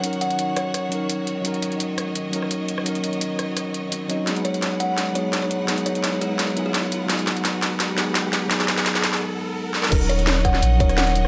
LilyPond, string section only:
\new Staff \with { instrumentName = "String section" } { \time 4/4 \key ees \minor \tempo 4 = 170 << { ges''1 | ees''1~ | ees''1 | ges''1~ |
ges''1~ | ges''1~ | ges''1 | ges''1 | } \\ { <ees ges' des''>1~ | <ees ges' des''>1~ | <ees ges' des''>1 | <aes bes' ces''>1~ |
<aes bes' ces''>1~ | <aes bes' ces''>1~ | <aes bes' ces''>1 | <des'' ees''>1 | } >> }